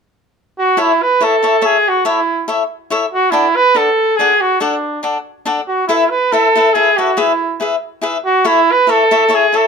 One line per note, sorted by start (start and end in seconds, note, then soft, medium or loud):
0.58 0.82 F#4 medium
0.77 0.91 E4 soft
0.77 1.04 E4 medium
0.77 0.91 A4 soft
0.77 0.92 C#5 soft
0.77 0.92 E5 medium
1.02 1.25 B4 medium
1.21 1.34 E4 soft
1.21 1.35 A4 soft
1.21 1.67 A4 medium
1.21 1.35 C#5 soft
1.21 1.35 E5 medium
1.43 1.55 E4 soft
1.43 1.55 A4 soft
1.43 1.55 C#5 soft
1.43 1.55 E5 medium
1.61 1.76 E4 soft
1.61 1.76 A4 soft
1.61 1.76 C#5 soft
1.61 1.77 E5 medium
1.65 1.90 G#4 medium
1.88 2.06 F#4 medium
2.05 2.19 E4 soft
2.05 2.46 E4 medium
2.05 2.19 A4 medium
2.05 2.19 C#5 medium
2.05 2.20 E5 medium
2.48 2.62 E4 soft
2.48 2.62 A4 soft
2.48 2.62 C#5 soft
2.48 2.63 E5 medium
2.90 3.04 E4 medium
2.90 3.05 A4 medium
2.90 3.05 C#5 medium
2.90 3.05 E5 medium
3.13 3.32 F#4 medium
3.30 3.46 D4 medium
3.30 3.57 E4 medium
3.30 3.47 A4 medium
3.30 3.47 D5 medium
3.30 3.47 F#5 medium
3.56 3.78 B4 medium
3.75 3.89 D4 soft
3.75 3.89 A4 soft
3.75 4.18 A4 medium
3.75 3.89 D5 soft
3.75 3.89 F#5 medium
4.16 4.32 D4 soft
4.16 4.42 G#4 medium
4.16 4.33 A4 soft
4.16 4.33 D5 soft
4.21 4.33 F#5 medium
4.41 4.60 F#4 medium
4.60 4.74 D4 medium
4.60 5.00 D4 medium
4.60 4.74 A4 medium
4.60 4.75 D5 medium
4.60 4.75 F#5 medium
5.03 5.17 D4 soft
5.03 5.17 A4 soft
5.03 5.17 D5 soft
5.03 5.17 F#5 soft
5.45 5.60 D4 medium
5.45 5.60 A4 medium
5.45 5.60 D5 medium
5.45 5.61 F#5 medium
5.68 5.87 F#4 medium
5.87 6.12 E4 medium
5.87 6.03 E4 medium
5.87 6.03 A4 medium
5.87 6.03 B4 medium
5.87 6.04 E5 medium
6.10 6.33 B4 medium
6.32 6.46 E4 soft
6.32 6.75 A4 medium
6.32 6.47 A4 soft
6.32 6.47 B4 medium
6.32 6.47 E5 medium
6.55 6.67 E4 medium
6.55 6.68 A4 soft
6.55 6.68 B4 medium
6.55 6.68 E5 soft
6.73 6.89 E4 soft
6.73 6.98 G#4 medium
6.73 6.89 A4 soft
6.73 6.89 B4 soft
6.73 6.90 E5 soft
6.97 7.10 E4 soft
6.97 7.17 F#4 medium
6.97 7.10 A4 soft
6.97 7.10 B4 soft
6.97 7.11 E5 soft
7.17 7.31 E4 medium
7.17 7.59 E4 medium
7.17 7.32 G#4 medium
7.17 7.32 B4 medium
7.17 7.32 E5 medium
7.60 7.74 E4 soft
7.60 7.74 G#4 soft
7.60 7.74 B4 soft
7.60 7.75 E5 medium
8.02 8.16 E4 soft
8.02 8.17 G#4 medium
8.02 8.17 B4 medium
8.02 8.17 E5 medium
8.25 8.48 F#4 medium
8.44 8.59 E4 medium
8.44 8.73 E4 medium
8.44 8.59 A4 medium
8.44 8.59 C#5 medium
8.44 8.59 E5 medium
8.72 8.91 B4 medium
8.87 9.01 E4 soft
8.87 9.02 A4 soft
8.87 9.36 A4 medium
8.87 9.02 C#5 soft
8.87 9.03 E5 medium
9.11 9.23 E4 medium
9.11 9.23 A4 soft
9.11 9.23 C#5 medium
9.11 9.23 E5 medium
9.29 9.44 E4 soft
9.29 9.44 A4 soft
9.29 9.44 C#5 soft
9.29 9.45 E5 medium
9.34 9.57 G#4 medium
9.53 9.65 E4 soft
9.53 9.66 A4 soft
9.53 9.67 A4 medium
9.53 9.66 C#5 soft
9.53 9.66 E5 soft